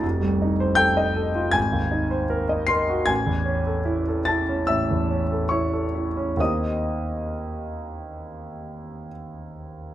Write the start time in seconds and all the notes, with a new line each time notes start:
0.03 F1
0.21 C2
0.42 D#4
0.60 C5
0.75 A4 G5 G6
0.97 D#5
1.16 A4
1.35 F4
1.51 G#1 G#5 G#6
1.72 D#2
1.91 D#4
2.11 C5
2.30 A#4
2.49 D#5
2.67 A#4 C6 C7
2.89 F#4
3.06 A1 G#5 G#6
3.26 E2
3.46 C#4
3.67 A4
3.85 E4
4.08 A4
4.25 E4 A5 A6
4.49 C#4
4.67 A1 E5 E6
4.91 E2
5.11 C#4
5.32 A4
5.49 E4 C#5 C#6
5.73 A4
5.95 E4
6.17 C#4
6.37 D#2 A#3 C4 D#4 G4 D#6
6.41 D#5